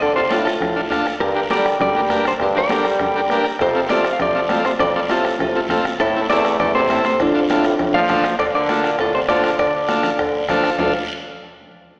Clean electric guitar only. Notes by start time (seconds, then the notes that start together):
0.00 A4 D5
0.16 A4 C5
0.30 F4 A4
0.45 F4 A4
1.20 G4 A#4
1.50 A#4 D5
1.81 A#4 D5
2.27 A4 C5
2.42 G4 A#4
2.57 A#4 D5
3.61 A4 C5
3.90 A4 D5
4.13 F5
4.21 A4 D5
4.65 A4 C5
4.80 A4 D5
5.11 F4 A4
5.41 F4 A4
6.00 E4 A4
6.30 A4 D5
6.60 A4 D5
6.75 A4 C5
7.06 A4 C5
7.21 D4 F4
7.94 D5 F5
8.39 A4 D5
8.55 A#4 D5
9.01 F4 A4
9.15 A4 C5
9.29 A4 D5
9.59 A4 D5